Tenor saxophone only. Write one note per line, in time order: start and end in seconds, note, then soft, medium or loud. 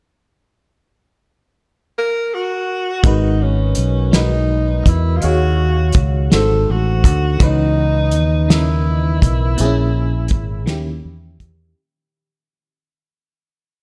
1.98 2.36 A#4 loud
2.35 3.07 F#4 medium
3.06 3.44 D#4 medium
3.43 4.14 C#4 medium
4.16 4.90 D#4 loud
4.89 5.18 E4 medium
5.17 5.26 F4 medium
5.24 6.05 F#4 loud
6.33 6.72 A4 loud
6.71 7.44 F#4 medium
7.43 8.54 D#4 loud
8.52 11.05 E4 medium